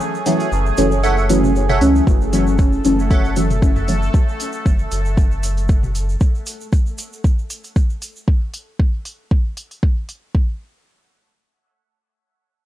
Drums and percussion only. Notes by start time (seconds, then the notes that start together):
0.00 shaker
0.15 shaker
0.26 open hi-hat, shaker
0.40 open hi-hat, shaker
0.52 shaker
0.66 shaker
0.77 open hi-hat, shaker
0.91 shaker
1.04 shaker
1.18 shaker
1.29 open hi-hat, shaker
1.44 high tom, shaker
1.56 shaker
1.69 high tom, shaker
1.81 open hi-hat, shaker
1.96 shaker
2.07 kick, shaker
2.21 shaker
2.33 open hi-hat, shaker
2.47 shaker
2.58 kick, shaker
2.72 shaker
2.85 open hi-hat, shaker
2.99 shaker
3.11 kick, shaker
3.25 shaker
3.36 open hi-hat, shaker
3.50 open hi-hat, high tom, shaker
3.62 kick, shaker
3.76 mid tom, shaker
3.88 open hi-hat, shaker
4.02 shaker
4.14 kick, shaker
4.29 shaker
4.40 open hi-hat, shaker
4.53 shaker
4.66 kick, shaker
4.79 shaker
4.92 open hi-hat, shaker
5.05 shaker
5.17 kick, shaker
5.32 shaker
5.43 open hi-hat, shaker
5.57 open hi-hat, shaker
5.69 kick, shaker
5.83 high tom, shaker
5.95 open hi-hat, shaker
6.09 shaker
6.21 kick, shaker
6.35 shaker
6.46 open hi-hat, shaker
6.61 shaker
6.73 kick, shaker
6.86 shaker
6.98 open hi-hat, shaker
7.13 shaker
7.24 kick, shaker
7.39 shaker
7.50 open hi-hat, shaker
7.64 open hi-hat, shaker
7.76 kick, shaker
7.90 shaker
8.02 open hi-hat, shaker
8.16 shaker
8.28 kick
8.54 open hi-hat
8.79 kick
9.05 open hi-hat
9.31 kick
9.57 open hi-hat
9.71 open hi-hat
9.83 kick
10.09 open hi-hat
10.35 kick